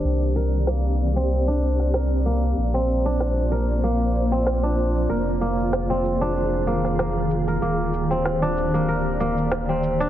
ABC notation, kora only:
X:1
M:4/4
L:1/16
Q:"Swing 16ths" 1/4=95
K:Bbmix
V:1 name="Kora"
z2 B z B,3 C2 D3 B z B,2 | z C2 D3 B z B,3 C2 D3 | B z B,3 C2 D3 B, z B, z2 B | B,3 C2 D2 B, B z B,3 C2 D |]